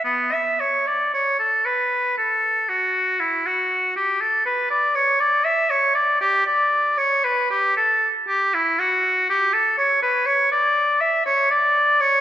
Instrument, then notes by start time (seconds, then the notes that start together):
oboe
0.04 B3
0.32 E5
0.60 C#5
0.87 D5
1.14 C#5
1.39 A4
1.66 B4
2.17 A4
2.69 F#4
3.20 E4
3.46 F#4
3.96 G4
4.21 A4
4.45 B4
4.70 D5
4.95 C#5
5.20 D5
5.45 E5
5.70 C#5
5.94 D5
6.21 G4
6.46 D5
6.97 C#5
7.24 B4
7.50 G4
7.77 A4
8.28 G4
8.54 E4
8.79 F#4
9.29 G4
9.53 A4
9.77 C#5
10.02 B4
10.26 C#5
10.51 D5
11.01 E5
11.26 C#5
11.50 D5
12.00 C#5